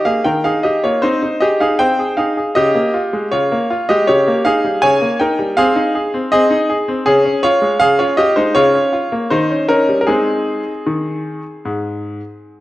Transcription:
0.05 A#3 G#4 F5
0.24 D#3 A#4 G5
0.44 D#4 G#4 F5
0.63 G4 D#5
0.84 A#3 F4 C#5
1.02 C4 D#4 C5
1.23 D#4
1.40 G4 G#4 D#5
1.60 D#4 G#4 F5
1.79 C4 C5 G5
1.99 G#4
2.17 D#4 G#4 F5
2.37 G#4
2.55 C#3 G4 D#5
2.75 A#3
2.94 F4
3.13 G#3
3.32 C#3 F4 C#5
3.52 A#3
3.71 F4
3.89 G#3 G4 D#5
4.07 C#3 G4 C#5
4.28 A#3
4.45 D#4 G#4 F5
4.65 G3
4.82 C#3 C#5 G#5
5.01 A#3
5.20 D#4 A#4 G5
5.39 G3
5.57 C4 G#4 F5
5.76 D#4
5.95 G#4
6.14 C4
6.32 C4 G#4 D#5
6.51 D#4
6.70 G#4
6.88 C4
7.06 C#3 C#4 G#4
7.25 C#4
7.43 F4 C#5
7.62 G#3
7.79 C#3 G#4 F5
7.99 C#4 F4 C#5
8.17 F4 G4 D#5
8.36 G#3 D#4 C5
8.55 C#3 F4 C#5
8.75 C#4
8.93 F4
9.12 A#3
9.30 D#3 D#4 C5
9.50 C#4
9.68 C#4 D#4 A#4
9.88 G3
10.01 A#4
10.06 G#3 C4 D#4 G#4
10.87 D#3
11.65 G#2

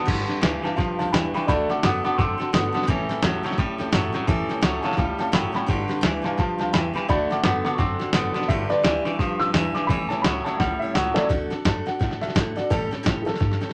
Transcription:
0.05 G1 G2 D3 G3 D4 G4 B4, kick, snare, crash
0.27 D4 G4 B4, muted upright bass stroke, snare
0.41 D2 G2 E3 G3 D4 G4 B4, snare, hi-hat pedal
0.60 G2 E3 B4 G#5
0.64 D4 G4 F5 A5, muted upright bass stroke, snare
0.76 E2 G2 F3 G3 D4 G4 B4 F5 A5, kick, snare
0.99 D2 D4 G4 B4 F5 A5, snare
1.11 E2 G2 E3 G3 D4 G4 B4 G5 B5, snare, hi-hat pedal
1.34 G2 E3 D4 G4 B4 G5 B5, muted upright bass stroke, snare
1.47 D2 D3 A3 D4 F#4 A4 D5 B5, kick, snare
1.69 D4 F#4 A4 F#5 D6, snare
1.83 F#2 D3 A3 B3 D4 F#4 A4 F#5 D6, snare, hi-hat pedal
2.04 D3 B3 D4 F#4 A4 F#5 D6, snare
2.15 F#2 D3 A3 C4 D4 C#6, kick, snare
2.19 F#4 A4 D6
2.38 D4 F#4 A4, snare
2.53 G1 D3 A3 B3 D4 F#4 A4, snare, hi-hat pedal
2.72 D3 B3 D4 F#4 A4, muted upright bass stroke, snare
2.82 snare
2.87 A1 A2 E3 G3 C#4 G4 A4, kick, snare
3.09 G3 C#4 G4 A4, muted upright bass stroke, snare
3.22 E2 A2 E3 F#3 G3 C#4 G4 A4, snare, hi-hat pedal
3.43 A2 F#3 G3 C#4 G4 A4, snare
3.51 snare
3.58 F#2 A2 G3 C#4 G4 A4, kick, snare
3.78 E2 G3 C#4 G4 A4, snare
3.92 F#2 A2 E3 F#3 G3 C#4 G4 A4, snare, hi-hat pedal
4.13 A2 F#3 G3 C#4 G4 A4, muted upright bass stroke, snare
4.27 E2 A2 E3 G3 C#4 G4 A4, kick, snare
4.48 G3 C#4 G4 A4, muted upright bass stroke, snare
4.61 C#2 A2 E3 F#3 G3 C#4 G4 A4, snare, hi-hat pedal
4.80 C#4 G4 A4 G#5
4.84 A2 F#3 G3 F5 A5, snare
4.91 snare
4.97 C#2 A2 G3 C#4 G4 A4 F5 A5, kick, snare
5.18 G3 C#4 G4 A4 F5 A5, muted upright bass stroke, snare
5.32 F#1 A2 E3 F#3 G3 C#4 G4 A4 G5 B5, snare, hi-hat pedal
5.52 A2 F#3 G3 C#4 G4 A4 G5 B5, muted upright bass stroke, snare
5.66 G1 G2 D3 G3 D4 G4 B4, kick, snare
5.88 D4 G4 B4, snare
6.01 D2 G2 E3 G3 D4 G4 B4, snare, hi-hat pedal
6.21 D4 G4 B4 F5 G#5, snare
6.25 G2 E3 A5, muted upright bass stroke
6.37 E2 G2 F3 G3 D4 G4 B4 F5 A5, kick, snare
6.58 D2 D4 G4 B4 F5 A5, snare
6.73 E2 G2 E3 G3 D4 G4 B4 G5 B5, snare, hi-hat pedal
6.93 G2 E3 D4 G4 B4 G5 B5, muted upright bass stroke, snare
7.08 D2 D3 A3 D4 F#4 A4 D5 B5, kick, snare
7.30 D4 F#4 A4 F#5 D6, snare
7.43 F#2 D3 A3 B3 D4 F#4 A4 F#5 D6, snare, hi-hat pedal
7.64 D3 B3 D4 F#4 A4 F#5 D6, muted upright bass stroke, snare
7.75 D3 A3 C4 D4 C#6, kick, snare
7.79 F#2 F#4 A4 D6
7.99 D4 F#4 A4, snare
8.13 F#1 D3 A3 B3 D4 F#4 A4, snare, hi-hat pedal
8.34 D3 B3 D4 F#4 A4, muted upright bass stroke, snare
8.42 snare
8.48 G1 G2 D3 G3 D4 G4 B4 E5, kick, snare
8.69 D4 G4 B4 D5, muted upright bass stroke, snare
8.83 D2 G2 E3 G3 D4 G4 B4, snare, hi-hat pedal
9.05 G2 E3 D4 G4 B4, muted upright bass stroke, snare
9.19 E2 G2 F3 G3 D4 G4 B4, kick, snare
9.39 D2 D4 G4 B4 E6, snare
9.53 E2 G2 E3 G3 D4 G4 B4, snare, hi-hat pedal
9.74 G2 E3 D4 G4 B4 D6, muted upright bass stroke, snare
9.87 A1 A2 E3 G3 C#4 E4 C#5 B5, kick, snare
10.09 G3 C#4 E4 C#5 A5, muted upright bass stroke, snare
10.22 C#2 A2 E3 F#3 G3 C#4 C#5 B5, snare, hi-hat pedal
10.26 E4
10.44 A2 F#3 G3 C#4 E4 C#5 A5, muted upright bass stroke, snare
10.57 C#2 A2 G3 C#4 F#5, kick, snare
10.62 E4 C#5
10.79 E4 C#5 E5, muted upright bass stroke
10.84 G3 C#4
10.94 C#2 A2 E3 F#3 G3 C#4 E4 C#5 F#5, snare, hi-hat pedal
11.14 A2 F#3 G3 C#4 E4 A4 C#5 D5, snare
11.29 D2 D3 A3 D4 F#4 A4, kick, snare
11.50 D4 F#4 A4, muted upright bass stroke, snare
11.65 F#2 D3 A3 D4 F#4 A4 A5, kick, snare, hi-hat pedal
11.86 D4 F#4 A4 F#5, snare
11.99 A2 A3 D4 F#4 A4, kick, snare
12.11 snare
12.21 D4 F#4 A4 E5, muted upright bass stroke, snare
12.28 snare
12.35 A2 D3 A3 D4 F#4 A4, kick, snare, hi-hat pedal
12.56 D4 F#4 A4 D5, muted upright bass stroke, snare
12.70 A1 A2 E3 G3 C#4 G4 A4, kick, snare
12.91 G3 C#4 G4 A4, muted upright bass stroke, snare
13.03 A2 E3 G3 C#4 G4 A4, kick, snare, hi-hat pedal
13.22 G#4 A4
13.26 G3 C#4 G4 A4, snare
13.34 G3, snare
13.39 G2 C#4 G4 A4, kick, snare
13.52 snare
13.60 G3 C#4 G4 A4, snare
13.69 snare

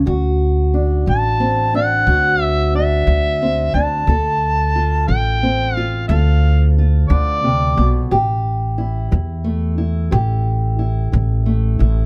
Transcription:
0.06 D2 D3 F#4
0.74 D4
1.06 A1 F#3 A5
1.40 C4
1.74 D4 F#5
2.07 D2 D3 F#4
2.43 E5
2.74 D4 E5
3.07 D2 F#3
3.42 C4
3.74 D2 D4 A5
4.07 D2 D3 A4
4.76 F4
5.08 A1 F3 G5
5.43 C4
5.76 F4 F5
6.08 D2 D3 A4 F5
6.78 F4
7.08 D2 D3 D5
7.44 C3
7.77 B1 B2
8.11 A1 A2 G4
8.78 E4
9.11 E2 E3
9.44 A3
9.78 E4
10.11 A1 A2 G4
10.79 E4
11.12 A1 E3
11.46 A3
11.79 A1 E4

